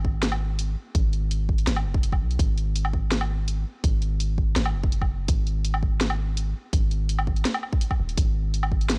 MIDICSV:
0, 0, Header, 1, 3, 480
1, 0, Start_track
1, 0, Key_signature, 5, "minor"
1, 0, Tempo, 361446
1, 1258, Time_signature, 4, 2, 24, 8
1, 11935, End_track
2, 0, Start_track
2, 0, Title_t, "808-style bass"
2, 0, Program_c, 0, 38
2, 0, Note_on_c, 0, 32, 98
2, 1004, Note_off_c, 0, 32, 0
2, 1260, Note_on_c, 0, 32, 101
2, 2204, Note_off_c, 0, 32, 0
2, 2219, Note_on_c, 0, 32, 98
2, 2455, Note_on_c, 0, 30, 85
2, 2475, Note_off_c, 0, 32, 0
2, 2935, Note_on_c, 0, 35, 101
2, 2955, Note_off_c, 0, 30, 0
2, 3158, Note_off_c, 0, 35, 0
2, 3177, Note_on_c, 0, 32, 104
2, 4843, Note_off_c, 0, 32, 0
2, 5097, Note_on_c, 0, 32, 104
2, 6043, Note_off_c, 0, 32, 0
2, 6059, Note_on_c, 0, 32, 97
2, 6296, Note_on_c, 0, 30, 83
2, 6316, Note_off_c, 0, 32, 0
2, 7002, Note_off_c, 0, 30, 0
2, 7017, Note_on_c, 0, 32, 96
2, 8683, Note_off_c, 0, 32, 0
2, 8939, Note_on_c, 0, 32, 98
2, 9884, Note_off_c, 0, 32, 0
2, 10620, Note_on_c, 0, 27, 84
2, 10840, Note_off_c, 0, 27, 0
2, 10857, Note_on_c, 0, 32, 98
2, 11935, Note_off_c, 0, 32, 0
2, 11935, End_track
3, 0, Start_track
3, 0, Title_t, "Drums"
3, 61, Note_on_c, 9, 36, 68
3, 194, Note_off_c, 9, 36, 0
3, 301, Note_on_c, 9, 38, 127
3, 301, Note_on_c, 9, 42, 85
3, 422, Note_on_c, 9, 77, 82
3, 434, Note_off_c, 9, 38, 0
3, 434, Note_off_c, 9, 42, 0
3, 555, Note_off_c, 9, 77, 0
3, 780, Note_on_c, 9, 42, 68
3, 913, Note_off_c, 9, 42, 0
3, 1259, Note_on_c, 9, 36, 121
3, 1261, Note_on_c, 9, 42, 77
3, 1392, Note_off_c, 9, 36, 0
3, 1393, Note_off_c, 9, 42, 0
3, 1501, Note_on_c, 9, 42, 36
3, 1634, Note_off_c, 9, 42, 0
3, 1740, Note_on_c, 9, 42, 68
3, 1873, Note_off_c, 9, 42, 0
3, 1979, Note_on_c, 9, 36, 63
3, 2102, Note_on_c, 9, 42, 35
3, 2111, Note_off_c, 9, 36, 0
3, 2221, Note_off_c, 9, 42, 0
3, 2221, Note_on_c, 9, 38, 126
3, 2221, Note_on_c, 9, 42, 81
3, 2344, Note_on_c, 9, 77, 79
3, 2353, Note_off_c, 9, 38, 0
3, 2353, Note_off_c, 9, 42, 0
3, 2476, Note_off_c, 9, 77, 0
3, 2581, Note_on_c, 9, 36, 109
3, 2699, Note_on_c, 9, 42, 66
3, 2714, Note_off_c, 9, 36, 0
3, 2821, Note_on_c, 9, 36, 63
3, 2825, Note_on_c, 9, 77, 38
3, 2832, Note_off_c, 9, 42, 0
3, 2954, Note_off_c, 9, 36, 0
3, 2958, Note_off_c, 9, 77, 0
3, 3064, Note_on_c, 9, 42, 35
3, 3177, Note_on_c, 9, 36, 119
3, 3181, Note_off_c, 9, 42, 0
3, 3181, Note_on_c, 9, 42, 76
3, 3310, Note_off_c, 9, 36, 0
3, 3314, Note_off_c, 9, 42, 0
3, 3421, Note_on_c, 9, 42, 36
3, 3554, Note_off_c, 9, 42, 0
3, 3660, Note_on_c, 9, 42, 66
3, 3782, Note_on_c, 9, 77, 59
3, 3793, Note_off_c, 9, 42, 0
3, 3897, Note_on_c, 9, 36, 64
3, 3915, Note_off_c, 9, 77, 0
3, 4030, Note_off_c, 9, 36, 0
3, 4138, Note_on_c, 9, 38, 127
3, 4138, Note_on_c, 9, 42, 80
3, 4262, Note_on_c, 9, 77, 77
3, 4271, Note_off_c, 9, 38, 0
3, 4271, Note_off_c, 9, 42, 0
3, 4395, Note_off_c, 9, 77, 0
3, 4619, Note_on_c, 9, 42, 64
3, 4752, Note_off_c, 9, 42, 0
3, 5097, Note_on_c, 9, 36, 118
3, 5097, Note_on_c, 9, 42, 78
3, 5230, Note_off_c, 9, 36, 0
3, 5230, Note_off_c, 9, 42, 0
3, 5336, Note_on_c, 9, 42, 36
3, 5469, Note_off_c, 9, 42, 0
3, 5579, Note_on_c, 9, 42, 64
3, 5711, Note_off_c, 9, 42, 0
3, 5817, Note_on_c, 9, 36, 60
3, 5949, Note_off_c, 9, 36, 0
3, 6057, Note_on_c, 9, 38, 123
3, 6057, Note_on_c, 9, 42, 80
3, 6183, Note_on_c, 9, 77, 82
3, 6190, Note_off_c, 9, 38, 0
3, 6190, Note_off_c, 9, 42, 0
3, 6315, Note_off_c, 9, 77, 0
3, 6421, Note_on_c, 9, 36, 101
3, 6536, Note_on_c, 9, 42, 64
3, 6554, Note_off_c, 9, 36, 0
3, 6660, Note_on_c, 9, 77, 39
3, 6661, Note_on_c, 9, 36, 60
3, 6669, Note_off_c, 9, 42, 0
3, 6793, Note_off_c, 9, 77, 0
3, 6794, Note_off_c, 9, 36, 0
3, 7016, Note_on_c, 9, 42, 77
3, 7018, Note_on_c, 9, 36, 115
3, 7149, Note_off_c, 9, 42, 0
3, 7151, Note_off_c, 9, 36, 0
3, 7260, Note_on_c, 9, 42, 35
3, 7393, Note_off_c, 9, 42, 0
3, 7497, Note_on_c, 9, 42, 67
3, 7621, Note_on_c, 9, 77, 61
3, 7630, Note_off_c, 9, 42, 0
3, 7738, Note_on_c, 9, 36, 61
3, 7754, Note_off_c, 9, 77, 0
3, 7870, Note_off_c, 9, 36, 0
3, 7979, Note_on_c, 9, 38, 123
3, 7979, Note_on_c, 9, 42, 82
3, 8101, Note_on_c, 9, 77, 84
3, 8112, Note_off_c, 9, 38, 0
3, 8112, Note_off_c, 9, 42, 0
3, 8234, Note_off_c, 9, 77, 0
3, 8461, Note_on_c, 9, 42, 65
3, 8594, Note_off_c, 9, 42, 0
3, 8938, Note_on_c, 9, 36, 113
3, 8939, Note_on_c, 9, 42, 80
3, 9071, Note_off_c, 9, 36, 0
3, 9072, Note_off_c, 9, 42, 0
3, 9180, Note_on_c, 9, 42, 38
3, 9312, Note_off_c, 9, 42, 0
3, 9418, Note_on_c, 9, 42, 70
3, 9543, Note_on_c, 9, 77, 63
3, 9551, Note_off_c, 9, 42, 0
3, 9657, Note_on_c, 9, 36, 64
3, 9676, Note_off_c, 9, 77, 0
3, 9780, Note_on_c, 9, 42, 37
3, 9790, Note_off_c, 9, 36, 0
3, 9897, Note_off_c, 9, 42, 0
3, 9897, Note_on_c, 9, 38, 123
3, 9897, Note_on_c, 9, 42, 86
3, 10019, Note_on_c, 9, 77, 88
3, 10030, Note_off_c, 9, 38, 0
3, 10030, Note_off_c, 9, 42, 0
3, 10133, Note_off_c, 9, 77, 0
3, 10133, Note_on_c, 9, 77, 41
3, 10260, Note_on_c, 9, 36, 104
3, 10266, Note_off_c, 9, 77, 0
3, 10374, Note_on_c, 9, 42, 68
3, 10393, Note_off_c, 9, 36, 0
3, 10501, Note_on_c, 9, 36, 59
3, 10501, Note_on_c, 9, 77, 42
3, 10507, Note_off_c, 9, 42, 0
3, 10633, Note_off_c, 9, 36, 0
3, 10634, Note_off_c, 9, 77, 0
3, 10743, Note_on_c, 9, 42, 37
3, 10856, Note_on_c, 9, 36, 119
3, 10857, Note_off_c, 9, 42, 0
3, 10857, Note_on_c, 9, 42, 84
3, 10989, Note_off_c, 9, 36, 0
3, 10990, Note_off_c, 9, 42, 0
3, 11340, Note_on_c, 9, 42, 73
3, 11461, Note_on_c, 9, 77, 63
3, 11472, Note_off_c, 9, 42, 0
3, 11576, Note_on_c, 9, 36, 62
3, 11594, Note_off_c, 9, 77, 0
3, 11702, Note_on_c, 9, 42, 38
3, 11709, Note_off_c, 9, 36, 0
3, 11814, Note_off_c, 9, 42, 0
3, 11814, Note_on_c, 9, 38, 123
3, 11814, Note_on_c, 9, 42, 86
3, 11935, Note_off_c, 9, 38, 0
3, 11935, Note_off_c, 9, 42, 0
3, 11935, End_track
0, 0, End_of_file